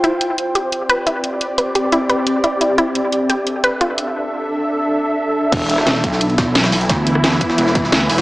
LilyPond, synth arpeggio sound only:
\new Staff \with { instrumentName = "Synth arpeggio sound" } { \time 4/4 \key e \minor \tempo 4 = 175 e'8 r4 g'8 r8 b'8 e'8 r8 | r8 b'8 g'8 e'8 b'8 r8 e'8 e'8 | e'8 r4 g'8 r8 b'8 f'8 r8 | r1 |
r1 | r1 | }